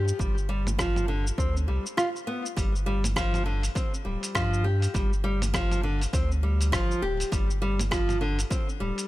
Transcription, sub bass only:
0.00 0.12 G2 medium
0.19 1.31 G1 medium
1.38 1.67 D2 loud
1.68 1.79 C2 medium
2.57 3.69 G1 loud
4.06 4.17 D1 medium
4.35 4.88 G2 loud
4.94 6.06 G1 medium
6.13 6.72 D2 loud
6.73 6.94 G1 medium
7.02 7.24 D1 loud
7.32 8.44 G1 medium
8.81 8.92 D1 medium

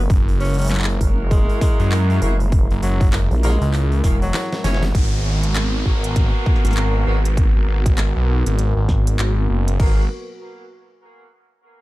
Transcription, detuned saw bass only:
0.10 0.99 F#1 loud
1.80 2.20 F#2 loud
2.71 2.81 F#1 loud
2.83 3.28 F#1 loud
3.61 4.02 C#2 loud
4.04 4.32 E1 loud
4.95 5.84 G#1 loud
5.86 6.31 G#1 loud
6.65 7.05 G#1 medium
7.07 7.53 G#1 loud
7.56 7.66 G#1 medium
7.68 8.13 G#1 loud
8.16 8.44 B1 medium
8.47 8.74 G#1 loud
8.77 9.17 G#1 loud
9.19 9.47 G#1 loud
9.49 9.78 F#1 loud
9.80 10.08 G#1 loud

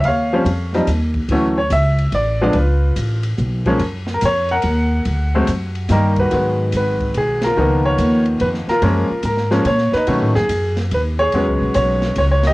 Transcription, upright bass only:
0.03 0.44 D#2 medium
0.45 0.86 F2 medium
0.87 1.28 D#2 medium
1.28 1.69 D2 medium
1.70 2.11 C#2 medium
2.12 2.53 A1 medium
2.54 2.95 C#2 medium
2.96 3.37 A1 medium
3.38 3.78 B1 medium
3.79 4.20 F#2 medium
4.22 4.63 F2 medium
4.64 5.04 D#2 medium
5.06 5.46 D2 medium
5.48 5.88 F#2 medium
5.89 6.30 G2 medium
6.33 6.72 G#2 medium
6.73 7.14 G#1 medium
7.15 7.55 B1 medium
7.57 7.97 C#2 medium
7.98 8.39 D#2 medium
8.40 8.66 F2 medium
8.67 muted upright bass stroke soft
8.82 9.08 F#2 medium
9.10 muted upright bass stroke soft
9.23 9.64 G#2 medium
9.65 9.91 A#2 medium
9.94 muted upright bass stroke soft
10.07 10.21 B2 medium
10.21 10.35 A2 medium
10.36 10.49 F#2 medium
10.49 10.90 F#2 medium
10.92 11.32 D#2 medium
11.34 11.48 E2 medium
11.48 11.61 C#2 medium
11.61 11.74 B1 medium
11.75 12.16 B1 medium
12.16 12.54 C#2 medium

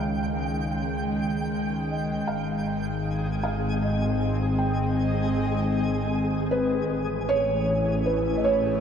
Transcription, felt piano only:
0.00 1.09 F5 medium
1.90 2.29 D#5 medium
2.27 3.42 F5 medium
3.43 3.83 F5 medium
3.82 4.61 D#5 medium
4.58 5.70 G5 medium
6.51 7.30 B4 loud
7.29 8.08 C#5 loud
8.06 8.38 B4 medium
8.35 8.43 D#5 medium
8.44 8.80 C#5 loud

